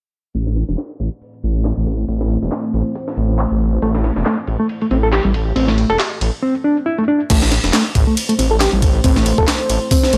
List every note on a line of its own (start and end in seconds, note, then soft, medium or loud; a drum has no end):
0.34 0.64 A1 loud
0.34 6.39 A3 medium
0.34 6.39 E4 medium
0.34 6.39 C5 medium
0.34 kick loud
0.34 ride medium
0.47 snare soft
0.56 snare soft
0.56 ride medium
0.69 0.76 E1 medium
0.69 snare soft
0.78 snare loud
0.78 clap loud
0.78 ride medium
1.00 1.09 A1 medium
1.00 kick medium
1.00 ride medium
1.22 ride medium
1.34 ride soft
1.43 1.72 A1 medium
1.43 ride medium
1.65 snare loud
1.65 clap loud
1.65 ride medium
1.77 2.05 A1 medium
1.87 kick medium
1.87 ride medium
2.08 2.37 A1 medium
2.08 kick loud
2.08 ride medium
2.21 snare soft
2.30 ride medium
2.42 2.50 E1 medium
2.42 kick medium
2.52 snare loud
2.52 clap loud
2.52 ride medium
2.74 2.83 A1 medium
2.74 ride medium
2.95 kick loud
2.95 open hi-hat medium
3.08 snare soft
3.17 3.46 A1 medium
3.17 ride medium
3.39 clap loud
3.39 ride medium
3.51 3.78 A1 medium
3.82 4.11 A1 medium
3.82 3.91 A3 medium
3.82 kick loud
3.82 ride medium
3.95 snare soft
4.04 snare soft
4.04 ride medium
4.16 4.23 E1 medium
4.16 snare soft
4.26 4.34 A3 medium
4.26 snare loud
4.26 clap loud
4.26 ride medium
4.47 4.57 A1 medium
4.47 kick medium
4.47 ride medium
4.60 4.66 A3 medium
4.69 ride medium
4.81 4.85 A3 medium
4.81 ride soft
4.91 5.20 A1 medium
4.91 4.96 C4 medium
4.91 ride medium
5.03 5.07 A4 medium
5.13 5.21 G4 medium
5.13 snare loud
5.13 clap loud
5.13 ride medium
5.25 5.52 A1 medium
5.25 5.31 G3 medium
5.34 kick medium
5.34 ride medium
5.56 5.85 A1 loud
5.56 5.68 C4 medium
5.56 kick loud
5.56 ride medium
5.68 5.89 A3 medium
5.68 snare soft
5.78 ride medium
5.90 5.97 E1 medium
5.90 5.96 A4 loud
5.90 kick medium
6.00 snare loud
6.00 clap loud
6.00 ride medium
6.21 6.30 A1 medium
6.21 ride medium
6.43 6.54 C4 medium
6.64 6.76 D4 medium
6.86 6.97 E4 medium
6.99 7.03 A3 medium
7.08 7.19 D4 medium
7.30 7.59 A1 loud
7.30 7.38 A3 medium
7.30 10.18 A3 medium
7.30 10.18 E4 medium
7.30 10.18 C5 medium
7.30 kick loud
7.30 crash medium
7.30 ride medium
7.42 snare soft
7.52 snare soft
7.52 ride medium
7.64 7.71 E1 loud
7.64 snare soft
7.73 7.82 A3 medium
7.73 snare loud
7.73 clap loud
7.73 ride medium
7.95 8.04 A1 medium
7.95 kick medium
7.95 ride medium
8.07 8.14 A3 medium
8.17 ride medium
8.29 8.33 A3 medium
8.29 ride soft
8.39 8.68 A1 medium
8.39 8.44 C4 medium
8.39 ride medium
8.51 8.55 A4 medium
8.60 8.69 G4 loud
8.60 snare loud
8.60 clap loud
8.60 ride medium
8.73 9.00 A1 medium
8.73 8.79 G3 medium
8.82 kick medium
8.82 ride medium
9.04 9.33 A1 loud
9.04 9.16 C4 medium
9.04 kick loud
9.04 ride medium
9.16 9.37 A3 medium
9.16 snare soft
9.26 ride medium
9.38 9.45 E1 medium
9.38 9.45 A4 loud
9.38 kick medium
9.48 snare loud
9.48 clap loud
9.48 ride medium
9.70 9.78 A1 medium
9.70 ride medium
9.91 10.12 C4 medium
9.91 kick loud
9.91 open hi-hat medium
10.03 snare soft
10.13 10.18 A1 medium
10.13 10.18 A3 medium
10.13 ride medium